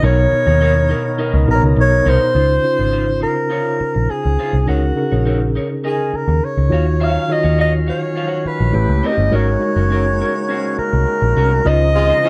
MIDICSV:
0, 0, Header, 1, 9, 480
1, 0, Start_track
1, 0, Key_signature, -5, "major"
1, 0, Tempo, 580833
1, 26, Time_signature, 4, 2, 24, 8
1, 10160, End_track
2, 0, Start_track
2, 0, Title_t, "Alto saxophone"
2, 0, Program_c, 0, 65
2, 44, Note_on_c, 0, 73, 102
2, 1200, Note_off_c, 0, 73, 0
2, 1245, Note_on_c, 0, 70, 87
2, 1348, Note_off_c, 0, 70, 0
2, 1490, Note_on_c, 0, 73, 104
2, 1726, Note_on_c, 0, 72, 120
2, 1738, Note_off_c, 0, 73, 0
2, 2664, Note_off_c, 0, 72, 0
2, 2669, Note_on_c, 0, 70, 89
2, 3391, Note_on_c, 0, 68, 74
2, 3404, Note_off_c, 0, 70, 0
2, 3866, Note_off_c, 0, 68, 0
2, 3871, Note_on_c, 0, 66, 65
2, 4572, Note_off_c, 0, 66, 0
2, 4842, Note_on_c, 0, 68, 72
2, 5086, Note_on_c, 0, 70, 74
2, 5099, Note_off_c, 0, 68, 0
2, 5329, Note_on_c, 0, 73, 87
2, 5341, Note_off_c, 0, 70, 0
2, 5815, Note_on_c, 0, 77, 94
2, 5827, Note_off_c, 0, 73, 0
2, 6053, Note_on_c, 0, 75, 87
2, 6065, Note_off_c, 0, 77, 0
2, 6281, Note_off_c, 0, 75, 0
2, 6287, Note_on_c, 0, 75, 96
2, 6391, Note_off_c, 0, 75, 0
2, 6525, Note_on_c, 0, 73, 97
2, 7003, Note_on_c, 0, 71, 80
2, 7015, Note_off_c, 0, 73, 0
2, 7485, Note_on_c, 0, 75, 87
2, 7497, Note_off_c, 0, 71, 0
2, 7731, Note_on_c, 0, 73, 86
2, 7743, Note_off_c, 0, 75, 0
2, 8908, Note_off_c, 0, 73, 0
2, 8913, Note_on_c, 0, 70, 88
2, 9653, Note_on_c, 0, 75, 121
2, 9665, Note_off_c, 0, 70, 0
2, 10160, Note_off_c, 0, 75, 0
2, 10160, End_track
3, 0, Start_track
3, 0, Title_t, "Clean electric guitar"
3, 0, Program_c, 1, 27
3, 18, Note_on_c, 1, 63, 75
3, 27, Note_on_c, 1, 70, 74
3, 33, Note_on_c, 1, 73, 77
3, 150, Note_off_c, 1, 63, 0
3, 154, Note_off_c, 1, 70, 0
3, 157, Note_off_c, 1, 73, 0
3, 378, Note_on_c, 1, 73, 52
3, 386, Note_on_c, 1, 70, 51
3, 395, Note_on_c, 1, 63, 47
3, 481, Note_off_c, 1, 73, 0
3, 485, Note_off_c, 1, 70, 0
3, 490, Note_off_c, 1, 63, 0
3, 501, Note_on_c, 1, 63, 76
3, 511, Note_on_c, 1, 70, 77
3, 513, Note_on_c, 1, 73, 82
3, 612, Note_off_c, 1, 73, 0
3, 623, Note_off_c, 1, 70, 0
3, 630, Note_off_c, 1, 63, 0
3, 736, Note_on_c, 1, 63, 62
3, 747, Note_on_c, 1, 70, 63
3, 751, Note_on_c, 1, 73, 58
3, 840, Note_off_c, 1, 63, 0
3, 846, Note_off_c, 1, 70, 0
3, 847, Note_off_c, 1, 73, 0
3, 979, Note_on_c, 1, 63, 78
3, 985, Note_on_c, 1, 70, 81
3, 992, Note_on_c, 1, 75, 82
3, 1202, Note_off_c, 1, 63, 0
3, 1205, Note_off_c, 1, 70, 0
3, 1209, Note_off_c, 1, 75, 0
3, 1699, Note_on_c, 1, 63, 76
3, 1705, Note_on_c, 1, 70, 82
3, 1713, Note_on_c, 1, 73, 94
3, 1813, Note_off_c, 1, 73, 0
3, 1822, Note_off_c, 1, 70, 0
3, 1829, Note_off_c, 1, 63, 0
3, 1938, Note_on_c, 1, 63, 47
3, 1945, Note_on_c, 1, 65, 54
3, 1950, Note_on_c, 1, 72, 57
3, 2069, Note_off_c, 1, 63, 0
3, 2072, Note_off_c, 1, 65, 0
3, 2075, Note_off_c, 1, 72, 0
3, 2297, Note_on_c, 1, 72, 44
3, 2305, Note_on_c, 1, 65, 39
3, 2308, Note_on_c, 1, 63, 33
3, 2397, Note_off_c, 1, 63, 0
3, 2400, Note_off_c, 1, 72, 0
3, 2404, Note_off_c, 1, 65, 0
3, 2407, Note_on_c, 1, 63, 59
3, 2418, Note_on_c, 1, 65, 63
3, 2422, Note_on_c, 1, 72, 71
3, 2517, Note_off_c, 1, 72, 0
3, 2528, Note_off_c, 1, 65, 0
3, 2543, Note_off_c, 1, 63, 0
3, 2651, Note_on_c, 1, 63, 47
3, 2658, Note_on_c, 1, 65, 45
3, 2662, Note_on_c, 1, 72, 52
3, 2757, Note_off_c, 1, 63, 0
3, 2761, Note_off_c, 1, 65, 0
3, 2763, Note_off_c, 1, 72, 0
3, 2890, Note_on_c, 1, 63, 67
3, 2896, Note_on_c, 1, 65, 64
3, 2905, Note_on_c, 1, 73, 72
3, 3118, Note_off_c, 1, 63, 0
3, 3121, Note_off_c, 1, 65, 0
3, 3126, Note_off_c, 1, 73, 0
3, 3627, Note_on_c, 1, 63, 59
3, 3633, Note_on_c, 1, 65, 65
3, 3638, Note_on_c, 1, 72, 62
3, 3738, Note_off_c, 1, 72, 0
3, 3749, Note_off_c, 1, 65, 0
3, 3754, Note_off_c, 1, 63, 0
3, 3861, Note_on_c, 1, 63, 58
3, 3865, Note_on_c, 1, 70, 61
3, 3871, Note_on_c, 1, 73, 62
3, 3991, Note_off_c, 1, 63, 0
3, 3993, Note_off_c, 1, 70, 0
3, 3996, Note_off_c, 1, 73, 0
3, 4228, Note_on_c, 1, 73, 41
3, 4234, Note_on_c, 1, 70, 38
3, 4243, Note_on_c, 1, 63, 34
3, 4327, Note_off_c, 1, 73, 0
3, 4330, Note_off_c, 1, 70, 0
3, 4332, Note_off_c, 1, 63, 0
3, 4342, Note_on_c, 1, 63, 68
3, 4351, Note_on_c, 1, 70, 70
3, 4355, Note_on_c, 1, 73, 66
3, 4456, Note_off_c, 1, 73, 0
3, 4467, Note_off_c, 1, 70, 0
3, 4472, Note_off_c, 1, 63, 0
3, 4589, Note_on_c, 1, 63, 50
3, 4596, Note_on_c, 1, 70, 55
3, 4603, Note_on_c, 1, 73, 52
3, 4688, Note_off_c, 1, 63, 0
3, 4692, Note_off_c, 1, 70, 0
3, 4695, Note_off_c, 1, 73, 0
3, 4826, Note_on_c, 1, 63, 64
3, 4830, Note_on_c, 1, 70, 71
3, 4833, Note_on_c, 1, 75, 69
3, 5048, Note_off_c, 1, 63, 0
3, 5049, Note_off_c, 1, 70, 0
3, 5051, Note_off_c, 1, 75, 0
3, 5554, Note_on_c, 1, 66, 67
3, 5558, Note_on_c, 1, 73, 66
3, 5565, Note_on_c, 1, 77, 71
3, 5658, Note_off_c, 1, 77, 0
3, 5663, Note_off_c, 1, 73, 0
3, 5679, Note_off_c, 1, 66, 0
3, 5784, Note_on_c, 1, 66, 67
3, 5788, Note_on_c, 1, 73, 60
3, 5795, Note_on_c, 1, 77, 72
3, 5953, Note_off_c, 1, 66, 0
3, 5954, Note_off_c, 1, 73, 0
3, 5958, Note_off_c, 1, 77, 0
3, 6143, Note_on_c, 1, 77, 49
3, 6150, Note_on_c, 1, 73, 47
3, 6156, Note_on_c, 1, 66, 39
3, 6246, Note_off_c, 1, 77, 0
3, 6249, Note_off_c, 1, 73, 0
3, 6252, Note_off_c, 1, 66, 0
3, 6263, Note_on_c, 1, 66, 71
3, 6269, Note_on_c, 1, 73, 75
3, 6274, Note_on_c, 1, 77, 68
3, 6372, Note_off_c, 1, 77, 0
3, 6378, Note_off_c, 1, 73, 0
3, 6394, Note_off_c, 1, 66, 0
3, 6499, Note_on_c, 1, 66, 46
3, 6509, Note_on_c, 1, 73, 54
3, 6512, Note_on_c, 1, 77, 55
3, 6604, Note_off_c, 1, 66, 0
3, 6609, Note_off_c, 1, 73, 0
3, 6610, Note_off_c, 1, 77, 0
3, 6739, Note_on_c, 1, 65, 66
3, 6749, Note_on_c, 1, 72, 80
3, 6754, Note_on_c, 1, 77, 78
3, 6830, Note_off_c, 1, 65, 0
3, 6830, Note_on_c, 1, 66, 66
3, 6840, Note_off_c, 1, 72, 0
3, 6840, Note_on_c, 1, 73, 80
3, 6845, Note_off_c, 1, 77, 0
3, 6845, Note_on_c, 1, 78, 78
3, 6965, Note_off_c, 1, 66, 0
3, 6970, Note_off_c, 1, 73, 0
3, 6972, Note_off_c, 1, 78, 0
3, 7464, Note_on_c, 1, 61, 70
3, 7469, Note_on_c, 1, 67, 70
3, 7473, Note_on_c, 1, 71, 73
3, 7578, Note_off_c, 1, 71, 0
3, 7585, Note_off_c, 1, 67, 0
3, 7633, Note_off_c, 1, 61, 0
3, 7703, Note_on_c, 1, 61, 74
3, 7708, Note_on_c, 1, 66, 78
3, 7710, Note_on_c, 1, 70, 78
3, 7834, Note_off_c, 1, 61, 0
3, 7836, Note_off_c, 1, 66, 0
3, 7837, Note_off_c, 1, 70, 0
3, 8065, Note_on_c, 1, 70, 49
3, 8071, Note_on_c, 1, 66, 44
3, 8076, Note_on_c, 1, 61, 39
3, 8167, Note_off_c, 1, 70, 0
3, 8170, Note_off_c, 1, 66, 0
3, 8173, Note_off_c, 1, 61, 0
3, 8184, Note_on_c, 1, 61, 70
3, 8196, Note_on_c, 1, 66, 78
3, 8200, Note_on_c, 1, 70, 75
3, 8304, Note_off_c, 1, 70, 0
3, 8311, Note_off_c, 1, 66, 0
3, 8314, Note_off_c, 1, 61, 0
3, 8433, Note_on_c, 1, 61, 56
3, 8440, Note_on_c, 1, 66, 46
3, 8440, Note_on_c, 1, 70, 58
3, 8531, Note_off_c, 1, 61, 0
3, 8534, Note_off_c, 1, 66, 0
3, 8534, Note_off_c, 1, 70, 0
3, 8667, Note_on_c, 1, 61, 66
3, 8676, Note_on_c, 1, 66, 75
3, 8682, Note_on_c, 1, 72, 77
3, 8889, Note_off_c, 1, 61, 0
3, 8893, Note_off_c, 1, 66, 0
3, 8896, Note_off_c, 1, 72, 0
3, 9394, Note_on_c, 1, 61, 78
3, 9401, Note_on_c, 1, 66, 81
3, 9404, Note_on_c, 1, 70, 75
3, 9512, Note_off_c, 1, 70, 0
3, 9518, Note_off_c, 1, 61, 0
3, 9520, Note_off_c, 1, 66, 0
3, 9632, Note_on_c, 1, 63, 69
3, 9637, Note_on_c, 1, 65, 75
3, 9644, Note_on_c, 1, 72, 69
3, 9758, Note_off_c, 1, 63, 0
3, 9760, Note_off_c, 1, 65, 0
3, 9763, Note_off_c, 1, 72, 0
3, 9995, Note_on_c, 1, 72, 52
3, 10000, Note_on_c, 1, 65, 46
3, 10007, Note_on_c, 1, 63, 40
3, 10091, Note_off_c, 1, 72, 0
3, 10093, Note_off_c, 1, 65, 0
3, 10097, Note_off_c, 1, 63, 0
3, 10109, Note_on_c, 1, 63, 79
3, 10115, Note_on_c, 1, 65, 77
3, 10123, Note_on_c, 1, 72, 90
3, 10160, Note_off_c, 1, 63, 0
3, 10160, Note_off_c, 1, 65, 0
3, 10160, Note_off_c, 1, 72, 0
3, 10160, End_track
4, 0, Start_track
4, 0, Title_t, "Tine electric piano"
4, 0, Program_c, 2, 4
4, 0, Control_c, 2, 64, 127
4, 20, Note_on_c, 2, 47, 82
4, 27, Note_on_c, 2, 59, 72
4, 29, Note_on_c, 2, 63, 71
4, 33, Note_on_c, 2, 70, 69
4, 34, Note_on_c, 2, 73, 79
4, 35, Control_c, 2, 64, 0
4, 177, Control_c, 2, 64, 127
4, 747, Note_off_c, 2, 47, 0
4, 750, Note_off_c, 2, 59, 0
4, 751, Note_off_c, 2, 63, 0
4, 753, Note_off_c, 2, 70, 0
4, 753, Note_off_c, 2, 73, 0
4, 1218, Note_on_c, 2, 47, 85
4, 1221, Note_on_c, 2, 59, 84
4, 1224, Note_on_c, 2, 63, 83
4, 1228, Note_on_c, 2, 70, 79
4, 1229, Note_on_c, 2, 71, 76
4, 1280, Note_off_c, 2, 71, 0
4, 1283, Note_on_c, 2, 73, 100
4, 1764, Note_off_c, 2, 47, 0
4, 1766, Note_off_c, 2, 59, 0
4, 1767, Note_off_c, 2, 63, 0
4, 1769, Note_off_c, 2, 70, 0
4, 1797, Note_off_c, 2, 73, 0
4, 1941, Note_on_c, 2, 49, 60
4, 1945, Note_on_c, 2, 61, 54
4, 1946, Note_on_c, 2, 63, 56
4, 1950, Note_on_c, 2, 65, 54
4, 1952, Control_c, 2, 64, 0
4, 1954, Note_on_c, 2, 72, 68
4, 2096, Control_c, 2, 64, 127
4, 2123, Note_off_c, 2, 49, 0
4, 2125, Note_off_c, 2, 61, 0
4, 2126, Note_off_c, 2, 63, 0
4, 2128, Note_off_c, 2, 65, 0
4, 2130, Note_off_c, 2, 72, 0
4, 2175, Note_on_c, 2, 49, 58
4, 2179, Note_on_c, 2, 61, 54
4, 2181, Note_on_c, 2, 63, 58
4, 2183, Note_on_c, 2, 65, 56
4, 2187, Note_on_c, 2, 72, 64
4, 2904, Note_off_c, 2, 49, 0
4, 2907, Note_off_c, 2, 61, 0
4, 2908, Note_off_c, 2, 63, 0
4, 2909, Note_off_c, 2, 65, 0
4, 2911, Note_off_c, 2, 72, 0
4, 3857, Note_on_c, 2, 49, 66
4, 3860, Note_on_c, 2, 61, 53
4, 3862, Note_on_c, 2, 63, 52
4, 3865, Note_on_c, 2, 68, 53
4, 3870, Note_on_c, 2, 70, 67
4, 3874, Control_c, 2, 64, 0
4, 4043, Note_off_c, 2, 49, 0
4, 4043, Control_c, 2, 64, 127
4, 4044, Note_off_c, 2, 61, 0
4, 4045, Note_off_c, 2, 63, 0
4, 4047, Note_off_c, 2, 68, 0
4, 4049, Note_off_c, 2, 70, 0
4, 4092, Note_on_c, 2, 49, 62
4, 4097, Note_on_c, 2, 61, 58
4, 4100, Note_on_c, 2, 63, 53
4, 4105, Note_on_c, 2, 68, 55
4, 4109, Note_on_c, 2, 70, 73
4, 4825, Note_off_c, 2, 49, 0
4, 4827, Note_off_c, 2, 61, 0
4, 4829, Note_off_c, 2, 63, 0
4, 4831, Note_off_c, 2, 68, 0
4, 4833, Note_off_c, 2, 70, 0
4, 5529, Note_on_c, 2, 51, 65
4, 5533, Note_on_c, 2, 63, 62
4, 5537, Note_on_c, 2, 65, 66
4, 5542, Note_on_c, 2, 66, 61
4, 5542, Note_on_c, 2, 73, 72
4, 5557, Control_c, 2, 64, 0
4, 5713, Control_c, 2, 64, 127
4, 5923, Note_off_c, 2, 51, 0
4, 5925, Note_off_c, 2, 63, 0
4, 5927, Note_off_c, 2, 65, 0
4, 5929, Note_off_c, 2, 66, 0
4, 5929, Note_off_c, 2, 73, 0
4, 6018, Note_on_c, 2, 51, 63
4, 6020, Note_on_c, 2, 63, 56
4, 6026, Note_on_c, 2, 65, 58
4, 6028, Note_on_c, 2, 66, 58
4, 6029, Note_on_c, 2, 73, 66
4, 6749, Note_off_c, 2, 51, 0
4, 6750, Note_off_c, 2, 63, 0
4, 6753, Note_off_c, 2, 65, 0
4, 6754, Note_off_c, 2, 66, 0
4, 6754, Note_off_c, 2, 73, 0
4, 7210, Note_on_c, 2, 57, 71
4, 7215, Note_on_c, 2, 64, 66
4, 7218, Note_on_c, 2, 67, 64
4, 7222, Note_on_c, 2, 73, 79
4, 7223, Note_on_c, 2, 71, 68
4, 7240, Control_c, 2, 64, 0
4, 7397, Control_c, 2, 64, 127
4, 7604, Note_off_c, 2, 57, 0
4, 7606, Note_off_c, 2, 64, 0
4, 7608, Note_off_c, 2, 67, 0
4, 7610, Note_off_c, 2, 71, 0
4, 7610, Note_off_c, 2, 73, 0
4, 7687, Note_on_c, 2, 56, 69
4, 7693, Note_on_c, 2, 63, 60
4, 7693, Note_on_c, 2, 66, 61
4, 7700, Note_on_c, 2, 70, 61
4, 7702, Note_on_c, 2, 73, 79
4, 7721, Control_c, 2, 64, 0
4, 7869, Control_c, 2, 64, 127
4, 7880, Note_off_c, 2, 56, 0
4, 7882, Note_off_c, 2, 63, 0
4, 7882, Note_off_c, 2, 66, 0
4, 7886, Note_off_c, 2, 70, 0
4, 7887, Note_off_c, 2, 73, 0
4, 7931, Note_on_c, 2, 56, 70
4, 7932, Note_on_c, 2, 63, 61
4, 7936, Note_on_c, 2, 66, 63
4, 7944, Note_on_c, 2, 70, 62
4, 7944, Note_on_c, 2, 73, 73
4, 8665, Note_off_c, 2, 56, 0
4, 8665, Note_off_c, 2, 63, 0
4, 8667, Note_off_c, 2, 66, 0
4, 8671, Note_off_c, 2, 70, 0
4, 8671, Note_off_c, 2, 73, 0
4, 9624, Note_on_c, 2, 49, 73
4, 9626, Note_on_c, 2, 61, 67
4, 9627, Note_on_c, 2, 65, 67
4, 9635, Note_on_c, 2, 72, 65
4, 9635, Note_on_c, 2, 75, 83
4, 9638, Control_c, 2, 64, 0
4, 9789, Control_c, 2, 64, 127
4, 10160, Note_off_c, 2, 49, 0
4, 10160, Note_off_c, 2, 61, 0
4, 10160, Note_off_c, 2, 65, 0
4, 10160, Note_off_c, 2, 72, 0
4, 10160, Note_off_c, 2, 75, 0
4, 10160, End_track
5, 0, Start_track
5, 0, Title_t, "Tonewheel organ"
5, 0, Program_c, 3, 16
5, 0, Note_on_c, 3, 51, 68
5, 0, Note_on_c, 3, 63, 85
5, 39, Note_on_c, 3, 59, 64
5, 41, Note_on_c, 3, 70, 66
5, 1904, Note_off_c, 3, 63, 0
5, 1911, Note_off_c, 3, 51, 0
5, 1931, Note_off_c, 3, 59, 0
5, 1932, Note_off_c, 3, 70, 0
5, 5788, Note_on_c, 3, 61, 59
5, 5790, Note_on_c, 3, 77, 63
5, 5793, Note_on_c, 3, 51, 61
5, 5793, Note_on_c, 3, 54, 57
5, 7215, Note_off_c, 3, 61, 0
5, 7216, Note_off_c, 3, 77, 0
5, 7217, Note_off_c, 3, 54, 0
5, 7218, Note_off_c, 3, 51, 0
5, 7222, Note_on_c, 3, 67, 64
5, 7223, Note_on_c, 3, 49, 62
5, 7229, Note_on_c, 3, 57, 54
5, 7229, Note_on_c, 3, 59, 56
5, 7698, Note_off_c, 3, 49, 0
5, 7701, Note_off_c, 3, 67, 0
5, 7705, Note_off_c, 3, 57, 0
5, 7705, Note_off_c, 3, 59, 0
5, 7708, Note_on_c, 3, 49, 63
5, 7709, Note_on_c, 3, 58, 59
5, 7711, Note_on_c, 3, 66, 68
5, 7713, Note_on_c, 3, 56, 58
5, 9608, Note_off_c, 3, 49, 0
5, 9608, Note_off_c, 3, 58, 0
5, 9609, Note_off_c, 3, 66, 0
5, 9610, Note_off_c, 3, 56, 0
5, 9636, Note_on_c, 3, 56, 65
5, 9640, Note_on_c, 3, 51, 68
5, 9640, Note_on_c, 3, 63, 77
5, 9641, Note_on_c, 3, 53, 61
5, 10160, Note_off_c, 3, 51, 0
5, 10160, Note_off_c, 3, 53, 0
5, 10160, Note_off_c, 3, 56, 0
5, 10160, Note_off_c, 3, 63, 0
5, 10160, End_track
6, 0, Start_track
6, 0, Title_t, "Horn section"
6, 0, Program_c, 4, 61
6, 9873, Note_on_c, 4, 56, 74
6, 9873, Note_on_c, 4, 65, 91
6, 9874, Note_on_c, 4, 48, 81
6, 10062, Note_off_c, 4, 56, 0
6, 10062, Note_off_c, 4, 65, 0
6, 10063, Note_off_c, 4, 48, 0
6, 10107, Note_on_c, 4, 53, 75
6, 10108, Note_on_c, 4, 44, 77
6, 10108, Note_on_c, 4, 61, 86
6, 10160, Note_off_c, 4, 44, 0
6, 10160, Note_off_c, 4, 53, 0
6, 10160, Note_off_c, 4, 61, 0
6, 10160, End_track
7, 0, Start_track
7, 0, Title_t, "Picked electric bass"
7, 0, Program_c, 5, 34
7, 28, Note_on_c, 5, 35, 108
7, 213, Note_off_c, 5, 35, 0
7, 387, Note_on_c, 5, 39, 83
7, 760, Note_off_c, 5, 39, 0
7, 1105, Note_on_c, 5, 37, 89
7, 1198, Note_off_c, 5, 37, 0
7, 1222, Note_on_c, 5, 34, 83
7, 1316, Note_off_c, 5, 34, 0
7, 1345, Note_on_c, 5, 37, 84
7, 1438, Note_off_c, 5, 37, 0
7, 1464, Note_on_c, 5, 35, 96
7, 1651, Note_off_c, 5, 35, 0
7, 1702, Note_on_c, 5, 36, 81
7, 1796, Note_off_c, 5, 36, 0
7, 1942, Note_on_c, 5, 37, 81
7, 2129, Note_off_c, 5, 37, 0
7, 2307, Note_on_c, 5, 32, 61
7, 2680, Note_off_c, 5, 32, 0
7, 3272, Note_on_c, 5, 34, 64
7, 3363, Note_off_c, 5, 34, 0
7, 3516, Note_on_c, 5, 37, 76
7, 3605, Note_off_c, 5, 37, 0
7, 3745, Note_on_c, 5, 36, 76
7, 3839, Note_off_c, 5, 36, 0
7, 3875, Note_on_c, 5, 37, 89
7, 4059, Note_off_c, 5, 37, 0
7, 4234, Note_on_c, 5, 34, 69
7, 4606, Note_off_c, 5, 34, 0
7, 5188, Note_on_c, 5, 39, 71
7, 5281, Note_off_c, 5, 39, 0
7, 5433, Note_on_c, 5, 37, 74
7, 5525, Note_off_c, 5, 37, 0
7, 5549, Note_on_c, 5, 39, 81
7, 5923, Note_off_c, 5, 39, 0
7, 6152, Note_on_c, 5, 39, 80
7, 6525, Note_off_c, 5, 39, 0
7, 7111, Note_on_c, 5, 34, 73
7, 7204, Note_off_c, 5, 34, 0
7, 7229, Note_on_c, 5, 33, 87
7, 7323, Note_off_c, 5, 33, 0
7, 7348, Note_on_c, 5, 37, 83
7, 7442, Note_off_c, 5, 37, 0
7, 7584, Note_on_c, 5, 31, 80
7, 7680, Note_off_c, 5, 31, 0
7, 7707, Note_on_c, 5, 32, 99
7, 7895, Note_off_c, 5, 32, 0
7, 8068, Note_on_c, 5, 30, 75
7, 8443, Note_off_c, 5, 30, 0
7, 9035, Note_on_c, 5, 36, 81
7, 9126, Note_off_c, 5, 36, 0
7, 9273, Note_on_c, 5, 34, 82
7, 9365, Note_off_c, 5, 34, 0
7, 9392, Note_on_c, 5, 36, 77
7, 9577, Note_off_c, 5, 36, 0
7, 9637, Note_on_c, 5, 37, 108
7, 10007, Note_off_c, 5, 37, 0
7, 10160, End_track
8, 0, Start_track
8, 0, Title_t, "Muted clean electric guitar strokes"
8, 260, Note_on_c, 9, 29, 44
8, 343, Note_off_c, 9, 29, 0
8, 622, Note_on_c, 9, 29, 41
8, 704, Note_off_c, 9, 29, 0
8, 858, Note_on_c, 9, 29, 35
8, 941, Note_off_c, 9, 29, 0
8, 1222, Note_on_c, 9, 29, 39
8, 1305, Note_off_c, 9, 29, 0
8, 1336, Note_on_c, 9, 29, 43
8, 1419, Note_off_c, 9, 29, 0
8, 1460, Note_on_c, 9, 29, 46
8, 1543, Note_off_c, 9, 29, 0
8, 1577, Note_on_c, 9, 29, 43
8, 1660, Note_off_c, 9, 29, 0
8, 1823, Note_on_c, 9, 29, 43
8, 1906, Note_off_c, 9, 29, 0
8, 2180, Note_on_c, 9, 29, 29
8, 2263, Note_off_c, 9, 29, 0
8, 2527, Note_on_c, 9, 29, 32
8, 2609, Note_off_c, 9, 29, 0
8, 2776, Note_on_c, 9, 29, 29
8, 2858, Note_off_c, 9, 29, 0
8, 3138, Note_on_c, 9, 29, 29
8, 3220, Note_off_c, 9, 29, 0
8, 3260, Note_on_c, 9, 29, 33
8, 3343, Note_off_c, 9, 29, 0
8, 3383, Note_on_c, 9, 29, 32
8, 3466, Note_off_c, 9, 29, 0
8, 3500, Note_on_c, 9, 29, 37
8, 3583, Note_off_c, 9, 29, 0
8, 3748, Note_on_c, 9, 29, 32
8, 3831, Note_off_c, 9, 29, 0
8, 4110, Note_on_c, 9, 29, 29
8, 4193, Note_off_c, 9, 29, 0
8, 4466, Note_on_c, 9, 29, 30
8, 4549, Note_off_c, 9, 29, 0
8, 4707, Note_on_c, 9, 29, 40
8, 4790, Note_off_c, 9, 29, 0
8, 5069, Note_on_c, 9, 29, 30
8, 5151, Note_off_c, 9, 29, 0
8, 5195, Note_on_c, 9, 29, 37
8, 5278, Note_off_c, 9, 29, 0
8, 5436, Note_on_c, 9, 29, 33
8, 5519, Note_off_c, 9, 29, 0
8, 5668, Note_on_c, 9, 29, 40
8, 5751, Note_off_c, 9, 29, 0
8, 6026, Note_on_c, 9, 29, 33
8, 6109, Note_off_c, 9, 29, 0
8, 6382, Note_on_c, 9, 29, 33
8, 6465, Note_off_c, 9, 29, 0
8, 6625, Note_on_c, 9, 29, 30
8, 6708, Note_off_c, 9, 29, 0
8, 6986, Note_on_c, 9, 29, 28
8, 7069, Note_off_c, 9, 29, 0
8, 7109, Note_on_c, 9, 29, 37
8, 7192, Note_off_c, 9, 29, 0
8, 7220, Note_on_c, 9, 29, 29
8, 7303, Note_off_c, 9, 29, 0
8, 7343, Note_on_c, 9, 29, 37
8, 7425, Note_off_c, 9, 29, 0
8, 7588, Note_on_c, 9, 29, 37
8, 7670, Note_off_c, 9, 29, 0
8, 7950, Note_on_c, 9, 29, 30
8, 8033, Note_off_c, 9, 29, 0
8, 8313, Note_on_c, 9, 29, 34
8, 8396, Note_off_c, 9, 29, 0
8, 8553, Note_on_c, 9, 29, 35
8, 8636, Note_off_c, 9, 29, 0
8, 8906, Note_on_c, 9, 29, 29
8, 8989, Note_off_c, 9, 29, 0
8, 9033, Note_on_c, 9, 29, 40
8, 9115, Note_off_c, 9, 29, 0
8, 9153, Note_on_c, 9, 29, 30
8, 9236, Note_off_c, 9, 29, 0
8, 9268, Note_on_c, 9, 29, 39
8, 9351, Note_off_c, 9, 29, 0
8, 9522, Note_on_c, 9, 29, 38
8, 9605, Note_off_c, 9, 29, 0
8, 9876, Note_on_c, 9, 29, 40
8, 9959, Note_off_c, 9, 29, 0
8, 10160, End_track
9, 0, Start_track
9, 0, Title_t, "Muted picked electric bass strokes"
9, 270, Note_on_c, 9, 29, 50
9, 353, Note_off_c, 9, 29, 0
9, 3146, Note_on_c, 9, 29, 39
9, 3229, Note_off_c, 9, 29, 0
9, 3391, Note_on_c, 9, 29, 39
9, 3474, Note_off_c, 9, 29, 0
9, 5071, Note_on_c, 9, 29, 41
9, 5154, Note_off_c, 9, 29, 0
9, 6989, Note_on_c, 9, 29, 43
9, 7071, Note_off_c, 9, 29, 0
9, 8914, Note_on_c, 9, 29, 42
9, 8996, Note_off_c, 9, 29, 0
9, 10160, End_track
0, 0, End_of_file